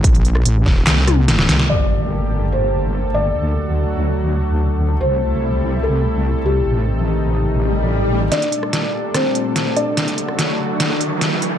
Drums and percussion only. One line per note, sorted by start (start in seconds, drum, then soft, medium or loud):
0.04 kick loud
0.04 closed hi-hat medium
0.15 closed hi-hat soft
0.25 closed hi-hat medium
0.35 cross-stick medium
0.46 closed hi-hat medium
0.66 kick medium
0.66 snare soft
0.87 snare loud
0.87 clap medium
0.87 closed hi-hat medium
1.08 cross-stick medium
1.08 closed hi-hat medium
1.08 high tom medium
1.28 snare medium
1.28 closed hi-hat medium
1.39 snare medium
1.49 snare medium
1.49 closed hi-hat medium
1.59 snare medium
1.70 crash medium
8.32 snare soft
8.32 closed hi-hat medium
8.42 closed hi-hat soft
8.52 closed hi-hat medium
8.63 cross-stick soft
8.73 snare soft
8.73 closed hi-hat medium
9.14 cross-stick medium
9.14 snare soft
9.14 closed hi-hat medium
9.35 closed hi-hat soft
9.56 snare medium
9.56 closed hi-hat medium
9.77 closed hi-hat soft
9.97 snare medium
9.97 closed hi-hat medium
10.08 closed hi-hat soft
10.18 closed hi-hat medium
10.29 cross-stick soft
10.39 snare medium
10.39 closed hi-hat medium
10.80 snare medium
10.80 closed hi-hat medium
11.01 closed hi-hat soft
11.21 snare medium
11.21 closed hi-hat medium
11.42 closed hi-hat medium